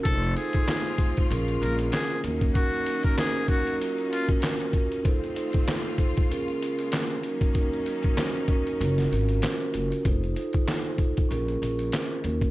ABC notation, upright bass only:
X:1
M:4/4
L:1/16
Q:"Swing 16ths" 1/4=96
K:Bbm
V:1 name="Upright bass" clef=bass
F,,,2 z6 B,,,2 B,,,2 z2 E,,2 | z16 | z16 | z8 G,,,2 A,,,2 z2 G,,, z |
F,,,2 z6 B,,,2 B,,,2 z2 E,,2 |]